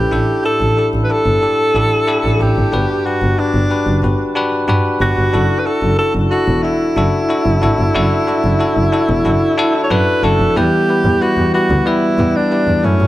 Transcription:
Already playing: tine electric piano C#4 E4 A4 B4 G5 A5, alto saxophone G4
0.11 double bass A1, tine electric piano A2 D4 E4 G4 A4
0.44 tine electric piano D4 E4 G4 A4, alto saxophone A4
0.61 double bass A1
0.77 tine electric piano D4 E4 G4 A4
0.94 double bass A1
1.04 alto saxophone B4
1.09 tine electric piano D4 E4 G4 A4, alto saxophone A4
1.26 double bass G1
1.42 tine electric piano D4 E4 G4 A4
1.75 double bass A1, tine electric piano D4 E4 G4 A4
2.07 tine electric piano D4 E4 G4 A4
2.24 double bass A1
2.39 double bass A1, tine electric piano D4 E4 G4 A4, alto saxophone G4
2.57 double bass G#1
2.72 double bass G1, tine electric piano G2 D4 F#4 G4 B4
3.06 tine electric piano D4 F#4 G4 B4, alto saxophone F#4
3.22 double bass G1
3.38 tine electric piano D4 F#4 G4 B4, alto saxophone D4
3.54 double bass G1
3.70 tine electric piano D4 F#4 G4 B4
3.87 double bass F#1
4.03 double bass G1, tine electric piano D4 F#4 G4 B4
4.35 tine electric piano D4 F#4 G4 B4
4.68 double bass G2, tine electric piano D4 F#4 G4 B4
5.01 double bass G1, tine electric piano D4 F#4 G4 B4, alto saxophone F#4
5.17 double bass G1
5.33 double bass F#1, tine electric piano D4 E4 F#4 A4
5.59 alto saxophone B4
5.66 tine electric piano D4 E4 F#4 A4, alto saxophone A4
5.83 double bass F#1
5.98 tine electric piano D4 E4 F#4 A4, alto saxophone A4
6.15 double bass F#1
6.30 tine electric piano D4 E4 F#4 A4, alto saxophone F#4
6.48 double bass E1
6.63 tine electric piano D4 E4 F#4 A4, alto saxophone E4
6.96 double bass F#1, tine electric piano D4 E4 F#4 A4
7.29 tine electric piano D4 E4 F#4 A4
7.46 double bass F#1
7.62 double bass G#1, tine electric piano D4 E4 F#4 A4
7.79 double bass G1
7.95 double bass F#1, tine electric piano D4 E4 F#4 A4
8.27 tine electric piano D4 E4 F#4 A4
8.44 double bass F#1
8.59 tine electric piano D4 E4 F#4 A4
8.77 double bass F#1
8.92 tine electric piano D4 E4 F#4 A4
9.09 double bass E1
9.25 double bass F#1, tine electric piano D4 E4 F#4 A4
9.57 tine electric piano D4 E4 F#4 A4
9.83 alto saxophone C#5
9.90 double bass F#2, tine electric piano D4 E4 F#4 B4, alto saxophone B4
10.23 double bass F#1, tine electric piano D4 E4 F#4 A4, alto saxophone A4
10.40 double bass F1
10.56 double bass E2, tine electric piano E3 G3 B3 E4 G4 B4, alto saxophone G4
10.89 tine electric piano G3 B3 E4 G4 B4
11.04 double bass E2
11.21 tine electric piano G3 B3 E4 G4 B4, alto saxophone F#4
11.37 double bass E2
11.54 tine electric piano G3 B3 E4 G4 B4, alto saxophone F#4
11.70 double bass D2
11.86 tine electric piano G3 B3 E4 G4 B4, alto saxophone E4
12.19 double bass E2, tine electric piano G3 B3 E4 G4 B4
12.36 alto saxophone D4
12.51 tine electric piano G3 B3 E4 G4 B4
12.67 double bass E2
12.83 double bass F#2, tine electric piano A3 C#4 E4 F#4 A4, alto saxophone C#4
13.00 double bass G2

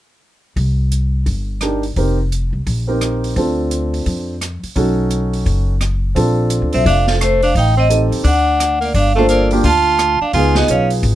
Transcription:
0.56 upright bass C2, kick, open hi-hat
0.92 closed hi-hat
1.26 upright bass G1, kick, open hi-hat
1.61 grand piano D4 D#4 G4 A#4, cross-stick, closed hi-hat
1.83 open hi-hat
1.96 upright bass F1, grand piano C4 D#4 G4 A#4, kick, open hi-hat
2.32 closed hi-hat
2.53 upright bass C2
2.66 upright bass A#1, kick, open hi-hat
2.87 grand piano C4 D#4 G4 A#4
3.01 cross-stick, closed hi-hat
3.24 open hi-hat
3.36 upright bass D2, grand piano C4 D4 F4 A4, kick, open hi-hat
3.71 closed hi-hat
3.94 open hi-hat
4.06 upright bass F2, kick, open hi-hat
4.41 cross-stick, closed hi-hat
4.63 muted upright bass stroke, open hi-hat
4.76 upright bass B1, grand piano C#4 D#4 F#4 A4, kick, open hi-hat
5.11 closed hi-hat
5.33 open hi-hat
5.46 upright bass F#1, kick, open hi-hat
5.81 cross-stick, closed hi-hat
6.15 upright bass A#1, grand piano C4 D4 F4 A4, kick, open hi-hat
6.50 closed hi-hat
6.62 upright bass D2
6.73 upright bass B1, tenor saxophone C4, vibraphone E5, open hi-hat
6.85 upright bass F1, tenor saxophone D4, vibraphone F5, kick, open hi-hat
7.07 tenor saxophone F3, vibraphone A4, snare
7.20 tenor saxophone A3, vibraphone C5, cross-stick, closed hi-hat
7.42 tenor saxophone D4, vibraphone F5, open hi-hat
7.55 upright bass A1, tenor saxophone D#4, vibraphone G5, kick, open hi-hat
7.77 tenor saxophone C4, vibraphone D#5
7.89 grand piano C4 D#4 G4 A4, closed hi-hat
8.12 upright bass D#2, open hi-hat
8.24 upright bass D2, tenor saxophone D4, vibraphone F#5, kick, open hi-hat
8.60 cross-stick, closed hi-hat
8.81 tenor saxophone A#3, open hi-hat
8.85 vibraphone D5
8.94 upright bass G1, tenor saxophone D4, kick, open hi-hat
8.99 vibraphone F5
9.15 tenor saxophone A3, grand piano A#3 D4 F4 A4, vibraphone C5
9.29 tenor saxophone A#3, vibraphone D5, closed hi-hat
9.51 grand piano A#3 D4 F4 G4, open hi-hat
9.64 upright bass D2, tenor saxophone F4, vibraphone A5, kick, open hi-hat
9.99 cross-stick, closed hi-hat
10.21 tenor saxophone D4, vibraphone F5, muted upright bass stroke
10.33 upright bass C#2, grand piano B3 D#4 F4 G#4, tenor saxophone F4, vibraphone G#5, kick, open hi-hat
10.55 tenor saxophone B3, vibraphone D#5, snare
10.68 upright bass B1, tenor saxophone C#4, vibraphone F5, closed hi-hat
10.90 open hi-hat
11.03 upright bass G#1, kick, open hi-hat

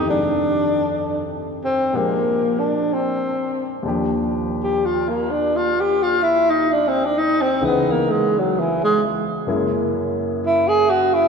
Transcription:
Already playing: grand piano F2
0.01 grand piano C3 D#3
0.07 grand piano G#3 G4, tenor saxophone D4
1.65 tenor saxophone C4
1.93 grand piano A#2 F3 G#3 C4 D4 G4, tenor saxophone A#3
2.59 tenor saxophone D4
2.93 tenor saxophone C4
3.83 grand piano D#2 A#2 F3 D4
3.88 grand piano G4
4.63 tenor saxophone G4
4.85 tenor saxophone F4
5.09 tenor saxophone A#3
5.31 tenor saxophone D4
5.56 tenor saxophone F4
5.80 tenor saxophone G4
6.03 tenor saxophone F4
6.23 tenor saxophone E4
6.50 tenor saxophone D#4
6.72 tenor saxophone D4
6.88 tenor saxophone C4
7.05 tenor saxophone D4
7.18 tenor saxophone D#4
7.41 tenor saxophone C4
7.61 grand piano C#2 C#3 E3 B3 D#4
7.65 tenor saxophone B3
7.91 tenor saxophone A#3
8.11 tenor saxophone G#3
8.39 tenor saxophone F#3
8.60 tenor saxophone E3
8.84 tenor saxophone G#3
9.47 grand piano F#2 C#3 G#3 A#3 E4
10.46 tenor saxophone E4
10.68 tenor saxophone G#4
10.90 tenor saxophone F#4
11.14 tenor saxophone E4

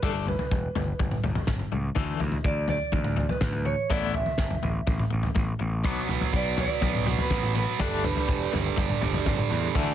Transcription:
0.02 picked electric bass G1, clean electric guitar G3 A3 D4 A4, kick, floor tom
0.27 clean electric guitar G3 A3 B4, floor tom
0.39 floor tom
0.51 picked electric bass E1, clean electric guitar G3 A3, kick
0.75 picked electric bass G1, clean electric guitar G3 A3, floor tom
0.99 picked electric bass G1, clean electric guitar G3 A3, kick, floor tom
1.11 mid tom
1.24 picked electric bass G1, clean electric guitar G3 A3, floor tom
1.35 floor tom
1.47 picked electric bass G1, clean electric guitar G3 A3, kick, snare, mid tom
1.59 mid tom
1.72 picked electric bass C#2, clean electric guitar G3 A3
1.95 picked electric bass D2, clean electric guitar D3 E3 A3, kick, floor tom
2.20 picked electric bass D2, clean electric guitar D3 E3, floor tom
2.32 floor tom
2.44 picked electric bass D2, clean electric guitar D3 E3 D5, kick
2.68 clean electric guitar D3 E3 D5, floor tom
2.92 picked electric bass D2, clean electric guitar D3 E3, kick, floor tom
3.04 mid tom
3.16 clean electric guitar D3 E3, floor tom
3.29 clean electric guitar B4, floor tom
3.41 picked electric bass D2, clean electric guitar D3 E3, kick, snare, mid tom
3.53 mid tom
3.65 clean electric guitar D3 E3 C#5
3.90 picked electric bass A1, clean electric guitar A3 B3 E4 D5, kick, floor tom
4.14 clean electric guitar A3 B3 E5, floor tom
4.26 floor tom
4.38 picked electric bass G1, clean electric guitar A3 B3, kick, snare
4.50 floor tom
4.63 picked electric bass A1, clean electric guitar A3 B3, floor tom
4.87 picked electric bass A1, clean electric guitar A3 B3, kick, floor tom
4.99 mid tom
5.10 picked electric bass A1, clean electric guitar A3 B3
5.23 floor tom
5.35 picked electric bass A1, clean electric guitar A3 B3, kick, mid tom
5.59 picked electric bass A1, clean electric guitar A3 B3
5.84 picked electric bass B1, clean electric guitar B2 F#3 B3, kick, floor tom
6.08 picked electric bass B1, clean electric guitar B2 F#3, distorted electric guitar B3, floor tom
6.21 floor tom
6.33 picked electric bass B1, clean electric guitar B2 F#3 D5, distorted electric guitar B3, kick
6.57 clean electric guitar B2 F#3 D5, distorted electric guitar B3, floor tom
6.81 picked electric bass B1, clean electric guitar B2 F#3, distorted electric guitar B3, kick, floor tom
6.94 mid tom
7.06 clean electric guitar B2 F#3, distorted electric guitar B3, floor tom
7.18 clean electric guitar B4, floor tom
7.31 picked electric bass A1, clean electric guitar B2 F#3, distorted electric guitar B3, kick, snare, mid tom
7.43 mid tom
7.55 clean electric guitar B2 F#3 B4, distorted electric guitar B3
7.79 picked electric bass G1, distorted electric guitar G2 D3, clean electric guitar G3 A3 D4 A4, kick, floor tom
8.04 distorted electric guitar G2 D3, clean electric guitar G3 A3 B4, floor tom
8.17 floor tom
8.28 picked electric bass E1, distorted electric guitar G2 D3, clean electric guitar G3 A3, kick
8.53 picked electric bass G1, distorted electric guitar G2 D3, clean electric guitar G3 A3, floor tom
8.76 picked electric bass G1, distorted electric guitar G2 D3, clean electric guitar G3 A3, kick, floor tom
8.90 mid tom
9.01 picked electric bass G1, distorted electric guitar G2 D3, clean electric guitar G3 A3, floor tom
9.14 floor tom
9.26 picked electric bass G1, distorted electric guitar G2 D3, clean electric guitar G3 A3, kick, snare, mid tom
9.39 mid tom
9.50 picked electric bass E2, distorted electric guitar G2 D3, clean electric guitar G3 A3
9.75 picked electric bass D2, clean electric guitar D3 E3 A3, distorted electric guitar D4, kick, floor tom

